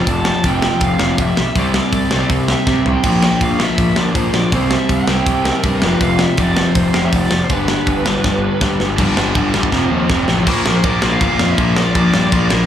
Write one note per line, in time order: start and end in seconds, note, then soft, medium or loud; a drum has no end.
0.00 0.43 F2 medium
0.00 0.44 C3 medium
0.00 0.44 F3 loud
0.00 0.44 A3 loud
0.00 0.45 C4 loud
0.00 1.57 C4 medium
0.00 0.44 F4 loud
0.07 0.31 F1 medium
0.07 0.46 A5 loud
0.07 kick loud
0.07 open hi-hat medium
0.25 snare loud
0.44 0.68 F1 medium
0.44 0.99 F2 medium
0.44 0.99 C3 medium
0.44 0.98 F3 medium
0.44 1.37 A3 medium
0.44 1.37 C4 medium
0.44 1.37 F4 medium
0.44 0.83 G5 loud
0.44 kick loud
0.44 open hi-hat medium
0.62 snare loud
0.81 0.93 F1 medium
0.81 1.20 F5 loud
0.81 kick loud
0.81 open hi-hat medium
0.99 1.12 F1 medium
0.99 1.37 F2 medium
0.99 1.36 C3 medium
0.99 1.36 F3 medium
0.99 snare loud
1.18 1.30 F1 medium
1.18 1.58 E5 loud
1.18 kick loud
1.18 open hi-hat medium
1.37 1.50 B1 medium
1.37 snare loud
1.55 1.79 C2 medium
1.55 2.10 C3 medium
1.55 2.11 G3 medium
1.55 2.09 C4 medium
1.55 2.10 E4 loud
1.55 2.27 D5 loud
1.55 kick loud
1.55 open hi-hat medium
1.74 snare loud
1.93 2.04 C2 medium
1.93 kick loud
1.93 open hi-hat medium
2.11 2.23 C2 medium
2.11 2.65 C3 medium
2.11 2.67 G3 medium
2.11 2.66 C4 medium
2.11 3.03 E4 medium
2.11 snare loud
2.30 2.53 C2 medium
2.30 kick loud
2.30 open hi-hat medium
2.48 2.87 E5 medium
2.48 snare loud
2.67 3.03 C3 medium
2.67 2.78 C3 medium
2.67 3.04 G3 medium
2.67 3.04 C4 medium
2.67 kick loud
2.67 snare medium
2.86 2.98 C2 medium
2.86 3.04 G5 loud
2.86 floor tom medium
3.03 3.27 A#1 medium
3.03 3.58 A#2 medium
3.03 3.59 D3 medium
3.03 3.59 F3 medium
3.03 3.58 A#3 loud
3.03 3.58 D4 loud
3.03 3.40 G5 loud
3.03 kick loud
3.03 open hi-hat medium
3.03 crash medium
3.22 snare loud
3.41 3.64 A#1 medium
3.41 3.61 F5 medium
3.41 kick loud
3.41 open hi-hat medium
3.59 4.13 A#2 medium
3.59 4.51 D3 medium
3.59 4.15 F3 medium
3.59 4.14 A#3 medium
3.59 4.51 D4 medium
3.59 3.98 E5 medium
3.59 snare loud
3.78 3.90 A#1 medium
3.78 kick loud
3.78 open hi-hat medium
3.96 4.08 A#1 medium
3.96 4.02 D5 medium
3.96 snare loud
4.15 4.27 A#1 medium
4.15 4.51 A#2 medium
4.15 4.52 F3 medium
4.15 4.53 A#3 medium
4.15 4.33 C5 medium
4.15 kick loud
4.15 open hi-hat medium
4.34 4.45 A#1 medium
4.34 4.52 D5 medium
4.34 snare loud
4.52 4.76 C2 medium
4.52 5.07 C3 medium
4.52 5.08 G3 loud
4.52 5.07 C4 loud
4.52 5.06 E4 loud
4.52 4.73 C5 medium
4.52 kick loud
4.52 open hi-hat medium
4.71 4.92 E5 medium
4.71 snare loud
4.89 5.01 C2 medium
4.89 5.48 G5 medium
4.89 kick loud
4.89 open hi-hat medium
5.07 5.20 C2 medium
5.07 5.62 C3 medium
5.07 5.63 G3 medium
5.07 5.62 C4 medium
5.07 5.81 E4 medium
5.07 snare loud
5.26 5.50 C2 medium
5.26 kick loud
5.26 open hi-hat medium
5.45 5.81 A#4 medium
5.45 snare loud
5.63 5.75 G2 medium
5.63 5.81 C3 medium
5.63 5.82 G3 medium
5.63 5.82 C4 medium
5.63 kick loud
5.63 open hi-hat medium
5.82 5.94 F1 medium
5.82 6.36 F2 loud
5.82 6.37 C3 medium
5.82 6.38 F3 medium
5.82 6.38 A3 loud
5.82 6.38 C4 medium
5.82 6.01 B4 medium
5.82 snare loud
6.01 6.24 F1 loud
6.01 6.21 F5 loud
6.01 kick loud
6.01 open hi-hat medium
6.19 6.39 E5 medium
6.19 snare loud
6.37 6.62 F1 medium
6.37 6.92 F2 medium
6.37 6.93 C3 medium
6.37 6.92 F3 medium
6.37 7.31 A3 medium
6.37 6.67 D5 medium
6.37 kick loud
6.37 open hi-hat medium
6.41 7.32 C4 medium
6.57 snare loud
6.67 6.75 C5 medium
6.75 6.87 F1 medium
6.75 7.02 C5 medium
6.75 kick loud
6.75 open hi-hat medium
6.93 7.06 F1 medium
6.93 7.31 F2 medium
6.93 7.30 C3 medium
6.93 7.30 F3 medium
6.93 snare loud
7.05 7.13 E5 medium
7.13 7.24 F1 loud
7.13 7.40 D5 medium
7.13 kick loud
7.13 open hi-hat medium
7.31 7.43 F1 medium
7.31 snare loud
7.43 7.51 C5 medium
7.49 7.73 G1 loud
7.49 8.04 G2 medium
7.49 8.05 D3 medium
7.49 8.04 G3 medium
7.49 8.05 B3 medium
7.49 8.04 D4 loud
7.49 8.62 B4 medium
7.49 kick loud
7.49 open hi-hat medium
7.68 snare loud
7.87 7.99 G1 medium
7.87 kick loud
7.87 open hi-hat medium
8.05 8.18 G1 medium
8.05 8.60 G2 medium
8.05 8.61 D3 medium
8.05 8.60 G3 medium
8.05 8.98 B3 medium
8.05 8.97 D4 medium
8.05 snare loud
8.24 8.48 G1 medium
8.24 kick loud
8.24 snare medium
8.61 8.97 G2 medium
8.61 8.73 G2 loud
8.61 8.98 D3 medium
8.61 8.98 G3 medium
8.61 kick loud
8.61 snare medium
8.80 8.98 G1 medium
8.80 snare medium
8.98 9.13 G1 medium
8.98 9.16 G2 medium
8.98 9.16 D3 loud
8.98 9.17 G3 medium
8.98 9.17 B3 loud
8.98 9.17 D4 loud
8.98 kick loud
8.98 crash loud
8.98 crash medium
9.17 9.32 G1 medium
9.17 9.35 G2 medium
9.17 9.36 D3 medium
9.17 9.36 G3 medium
9.17 9.36 B3 medium
9.17 9.36 D4 medium
9.17 snare loud
9.35 9.50 G1 medium
9.35 9.53 G2 medium
9.35 9.54 D3 medium
9.35 9.54 G3 medium
9.35 9.54 B3 medium
9.35 9.55 D4 loud
9.35 kick loud
9.35 crash medium
9.54 9.68 G1 medium
9.54 9.72 G2 medium
9.54 9.72 D3 medium
9.54 9.72 G3 loud
9.54 9.72 B3 medium
9.54 9.72 D4 medium
9.54 snare loud
9.63 kick loud
9.72 9.87 F1 medium
9.72 9.90 F2 medium
9.72 9.91 C3 medium
9.72 9.92 F3 loud
9.72 9.91 A3 loud
9.72 9.92 C4 loud
9.72 kick loud
9.72 snare medium
9.91 10.05 D#2 medium
9.91 10.09 F2 medium
9.91 10.09 C3 medium
9.91 10.10 F3 medium
9.91 10.10 A3 medium
9.91 10.10 C4 loud
10.10 10.24 F1 medium
10.10 10.27 F2 medium
10.10 10.28 C3 medium
10.10 10.28 F3 medium
10.10 10.29 A3 medium
10.10 10.29 C4 medium
10.10 kick loud
10.10 snare medium
10.28 10.47 A1 medium
10.28 10.46 F2 medium
10.28 10.46 C3 medium
10.28 10.46 F3 loud
10.28 10.46 A3 loud
10.28 10.47 C4 loud
10.28 snare medium
10.47 10.60 A#1 loud
10.47 10.84 A#2 medium
10.47 10.84 F3 loud
10.47 10.85 A#3 loud
10.47 kick loud
10.47 crash loud
10.47 crash medium
10.66 10.79 A#1 medium
10.66 10.75 A#4 medium
10.66 snare loud
10.75 10.84 C5 loud
10.84 10.97 A#1 medium
10.84 11.02 A#2 medium
10.84 11.03 F3 medium
10.84 11.03 A#3 medium
10.84 11.13 D5 loud
10.84 kick loud
10.84 crash medium
11.02 11.16 A#1 medium
11.02 11.20 A#2 medium
11.02 11.21 F3 medium
11.02 11.21 A#3 loud
11.02 snare loud
11.12 11.21 F5 loud
11.21 11.34 G1 medium
11.21 11.57 A#2 medium
11.21 11.58 F3 medium
11.21 11.58 A#3 loud
11.21 11.49 F5 loud
11.21 kick loud
11.21 crash medium
11.39 11.53 F2 loud
11.39 snare loud
11.50 11.78 E5 loud
11.58 11.84 A#1 loud
11.58 11.76 A#2 medium
11.58 11.77 F3 medium
11.58 11.77 A#3 medium
11.58 kick loud
11.58 crash medium
11.76 11.94 A#2 medium
11.76 11.95 F3 medium
11.76 11.95 A#3 loud
11.76 11.92 D5 medium
11.76 snare loud
11.94 12.08 A#1 loud
11.94 12.31 A#2 loud
11.94 12.33 F3 loud
11.94 12.33 A#3 loud
11.94 12.46 D5 loud
11.94 kick loud
11.94 crash medium
12.14 12.27 G2 medium
12.14 snare loud
12.32 12.46 A#1 loud
12.32 12.50 A#2 medium
12.32 12.51 F3 medium
12.32 12.51 A#3 loud
12.32 kick loud
12.32 crash medium
12.50 12.65 A#1 medium
12.50 12.66 A#2 medium
12.50 12.66 F3 loud
12.50 12.66 A#3 loud
12.50 snare loud